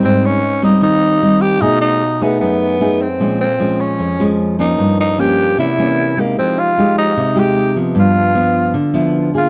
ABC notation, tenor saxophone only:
X:1
M:4/4
L:1/8
Q:1/4=151
K:Fm
V:1 name="Tenor saxophone"
C D2 E E3 G | ^D D2 =B, B,3 C- | C C2 D3 z E- | E E G2 =E3 B, |
C F2 E2 G2 z | F4- F z2 F |]